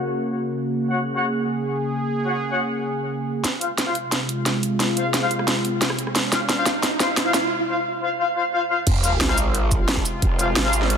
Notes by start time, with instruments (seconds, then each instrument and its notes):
Already playing: analog synth pad C#3 A#3 F#4
0.73 analog synth pad G#4
0.90 brass ensemble F#4 C#5 F#5
1.15 brass ensemble F#4 C#5 F#5
2.26 brass ensemble F#4 C#5 F#5
2.51 brass ensemble F#4 C#5 F#5
3.44 analog synth pad C3 G#3 F4, snare, closed hi-hat, riser
3.61 brass ensemble F4 C5 F5, closed hi-hat
3.78 snare, closed hi-hat
3.87 brass ensemble F4 C5 F5
3.95 closed hi-hat
4.12 snare, closed hi-hat
4.29 closed hi-hat
4.46 snare, closed hi-hat
4.63 closed hi-hat
4.80 snare, closed hi-hat
4.97 brass ensemble F4 C5 F5, closed hi-hat
5.14 snare, closed hi-hat
5.22 brass ensemble F4 C5 F5
5.31 closed hi-hat
5.39 cross-stick
5.48 snare, closed hi-hat
5.65 closed hi-hat
5.82 snare, closed hi-hat
5.90 cross-stick
5.99 closed hi-hat
6.07 cross-stick
6.15 snare, closed hi-hat
6.32 brass ensemble F4 C5 F5, snare, closed hi-hat, shaker
6.49 snare, closed hi-hat
6.58 brass ensemble F4 C5 F5
6.66 snare, closed hi-hat, shaker
6.83 snare, closed hi-hat
7.00 brass ensemble F4 C5 F5, snare, closed hi-hat, shaker
7.17 snare, closed hi-hat
7.26 brass ensemble F4 C5 F5
7.34 snare, closed hi-hat, shaker
7.68 brass ensemble F4 C5 F5
8.02 brass ensemble F4 C5 F5
8.19 brass ensemble F4 C5 F5
8.36 brass ensemble F4 C5 F5
8.53 brass ensemble F4 C5 F5
8.70 brass ensemble F4 C5 F5
8.87 wobble bass F1, analog synth pad C3 G#3 F4, kick, closed hi-hat, crash, sub drop
9.04 brass ensemble F4 C5 F5, closed hi-hat, shaker
9.21 wobble bass G#1, snare, closed hi-hat
9.29 brass ensemble F4 C5 F5, cross-stick
9.38 closed hi-hat, shaker
9.54 closed hi-hat
9.71 kick, closed hi-hat, shaker
9.80 wobble bass G1
9.88 snare, closed hi-hat
9.97 kick
10.05 closed hi-hat, shaker
10.22 wobble bass F1, kick, closed hi-hat
10.39 brass ensemble F4 C5 F5, closed hi-hat, shaker
10.56 wobble bass G#1, snare, closed hi-hat
10.65 brass ensemble F4 C5 F5
10.73 closed hi-hat, shaker
10.82 snare
10.90 closed hi-hat